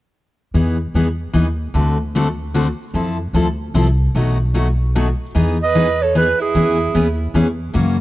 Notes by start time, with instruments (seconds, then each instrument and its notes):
0.54 upright bass E2, steel-string acoustic guitar E3 B3 D#4 G#4
0.94 upright bass E2, steel-string acoustic guitar E3 B3 D#4 G#4
1.33 upright bass D#2, steel-string acoustic guitar E3 B3 D#4 G#4
1.74 upright bass D2, steel-string acoustic guitar D3 A3 C4 F#4 A4
2.15 steel-string acoustic guitar D3 A3 C4 F#4 A4
2.54 steel-string acoustic guitar D3 A3 C4 F#4 A4
2.94 upright bass F2, steel-string acoustic guitar F3 C4 E4 A4
3.33 upright bass D2, steel-string acoustic guitar F3 C4 E4 A4
3.74 upright bass C2, steel-string acoustic guitar F3 C4 E4 A4
4.15 upright bass B1, steel-string acoustic guitar B2 F#3 A3 D#4 F#4
4.54 steel-string acoustic guitar B2 F#3 A3 D#4 F#4
4.95 steel-string acoustic guitar B2 F#3 A3 D#4 F#4
5.35 upright bass E2, steel-string acoustic guitar E3 B3 D#4 G#4
5.63 violin B4, clarinet D#5
5.75 steel-string acoustic guitar E3 B3 D#4 G#4
6.02 violin A4, clarinet C#5
6.15 steel-string acoustic guitar E3 B3 D#4 G#4, violin G#4, clarinet B4
6.41 violin E4, clarinet G#4
6.55 upright bass E2, steel-string acoustic guitar E3 B3 C#4 G#4
6.94 upright bass D#2, steel-string acoustic guitar E3 B3 C#4 G#4
7.34 upright bass E2, steel-string acoustic guitar E3 B3 C#4 G#4
7.74 upright bass F#2, steel-string acoustic guitar C#3 E3 A#3 C#4 F#4